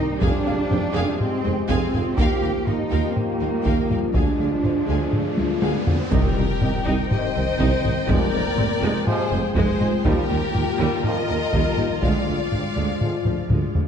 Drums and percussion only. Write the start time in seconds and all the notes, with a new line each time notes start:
0.22 taiko
0.71 taiko low-mid
1.20 taiko low-mid
1.69 taiko
1.94 taiko low-mid
2.18 taiko
2.67 taiko low-mid
3.16 taiko low-mid
3.66 taiko
3.90 taiko low-mid
4.14 taiko
4.64 taiko low-mid
5.13 taiko low-mid
5.37 taiko high
5.62 taiko high
5.87 taiko low
6.12 taiko
6.61 taiko low-mid
7.11 taiko low-mid
7.60 taiko
7.85 taiko low-mid
8.09 taiko
8.58 taiko low-mid
9.07 taiko low-mid
9.56 taiko
9.81 taiko low-mid
10.05 taiko
10.55 taiko low-mid
11.04 taiko low-mid
11.53 taiko
11.77 taiko low-mid
12.03 taiko
12.52 taiko low-mid
13.01 taiko low-mid
13.25 taiko low-mid
13.50 taiko low-mid
13.75 taiko low